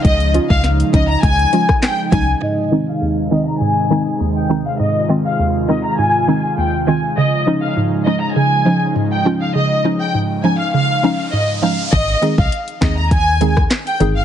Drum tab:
CC |----------------|----------------|----------------|----------------|
HH |xxx-xxx-xxx-x-x-|----------------|----------------|----------------|
CP |------------x---|----------------|----------------|----------------|
SD |----o------ro---|----------------|----------------|----------------|
BD |o--o--o-o--o--o-|----------------|----------------|----------------|

CC |----------------|x---------------|
HH |----------------|xxx-xxx-x-x-xxx-|
CP |----------------|------x-----x---|
SD |----------------|------o----ro---|
BD |----------------|o--o--o-o--o----|